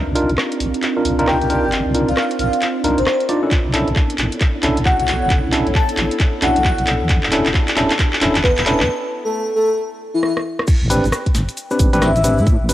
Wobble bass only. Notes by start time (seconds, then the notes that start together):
0.07 C2
0.29 C2
0.60 A#1
1.05 C2
1.64 G1
1.86 C2
2.08 C2
2.39 A#1
2.84 C2
2.98 A#1
3.65 B1
3.88 B1
4.18 A1
4.63 B1
5.22 F#1
5.44 B1
5.67 B1
5.97 A1
6.42 B1
7.01 E2
7.23 E1
7.46 E1
7.76 D1
8.21 E1
8.80 E2
10.81 A1
11.04 A1
11.35 G1
11.80 A1
12.38 A2
12.61 A1